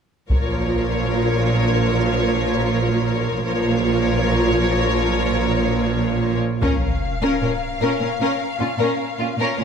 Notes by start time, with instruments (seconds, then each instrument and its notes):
0.31 double bass section A#1, cello section A#2, viola section F3 F4, violin section A#4 C#5, taiko
3.45 double bass section A#1, cello section A#2, viola section F3 F4, violin section A#4 C#5
6.62 double bass section A#1, cello section A#2, viola section C#4, violin section A#4 F5, taiko, sub drop
7.22 cello section A#2, viola section C#4, violin section A#4
7.42 cello section A#2, viola section C#4, violin section A#4
7.81 cello section A#2, viola section C#4, violin section A#4
8.01 cello section A#2, viola section C#4, violin section A#4
8.20 cello section A#2, viola section C#4, violin section A#4
8.60 cello section A#2, viola section C#4, violin section F4
8.79 cello section A#2, viola section C#4, violin section A#4
9.19 cello section A#2, viola section C#4, violin section F4
9.38 cello section A#2, viola section C#4, violin section A#4
9.57 cello section A#2, viola section C#4, violin section A#4